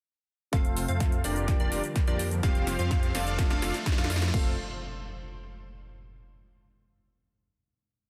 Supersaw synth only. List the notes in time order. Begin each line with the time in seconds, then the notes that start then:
0.53 C4 F4 A4 C5 F5
0.88 C4 F4 A4 C5 F5
1.24 D4 F4 G4 A#4 D5
1.60 D4 F4 G4 A#4 D5
2.08 D4 F4 G4 A#4 D5
2.43 C4 F4 G4 C5 F5
2.79 C4 F4 G4 C5 F5
3.15 D4 F4 A4 D5 F5
3.50 D4 F4 A4 D5 F5
3.98 D4 F4 A4 D5 F5
4.34 C4 F4 A4 C5 F5